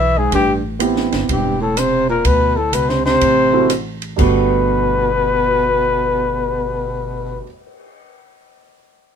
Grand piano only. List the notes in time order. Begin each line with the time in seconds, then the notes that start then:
0.79 B3 C4 E4 G4
3.53 A3 C4 E4 F#4
4.16 G2 G3 A3 B3 F#4